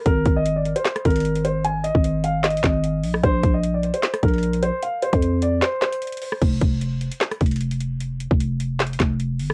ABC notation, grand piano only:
X:1
M:4/4
L:1/16
Q:1/4=151
K:Bbmix
V:1 name="Grand piano"
B3 e2 d2 c3 B4 c2 | a2 e4 f2 e2 e6 | c3 e2 d2 c3 B4 c2 | f2 c4 d2 c2 c6 |
z16 | z16 |]